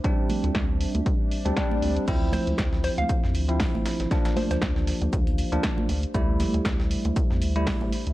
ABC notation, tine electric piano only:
X:1
M:4/4
L:1/16
Q:"Swing 16ths" 1/4=118
K:Dm
V:1 name="Tine electric piano"
[G,CD]8- [G,CD]3 [G,CD] [G,CD]4 | [F,CE]8- [F,CE]3 [F,CE]4- [F,CE] | [F,B,D]8- [F,B,D]3 [F,B,D]3 z2 | [G,A,E]8- [G,A,E]3 [G,A,E]3 z2 |]